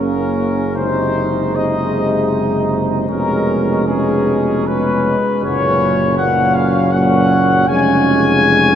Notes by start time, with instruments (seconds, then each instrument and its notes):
Already playing: tuba F#1, euphonium C#3, trombone section A#3, trumpet section A#4
0.00 flugelhorn C#4
0.76 euphonium C3, trombone section G#3, flugelhorn D#4, trumpet section C5
1.55 euphonium C3, trombone section G#3, flugelhorn D#4, trumpet section D#5
3.09 tuba F1, euphonium B2, trombone section G#3, flugelhorn C#4, trumpet section A#4
3.87 euphonium B2, trombone section G#3, flugelhorn C#4, trumpet section G#4
4.66 euphonium B2, trombone section G#3, flugelhorn C#4, trumpet section B4
5.42 tuba F#1, euphonium A#2, trombone section F#3, flugelhorn C#4, trumpet section C#5
6.18 euphonium A#2, trombone section F#3, flugelhorn C#4, trumpet section F#5
6.54 trumpet section F5
6.92 euphonium A#2, trombone section F#3, flugelhorn C#4, trumpet section F#5
7.67 tuba F1, euphonium C#3, trombone section G#3, flugelhorn C#4, trumpet section G#5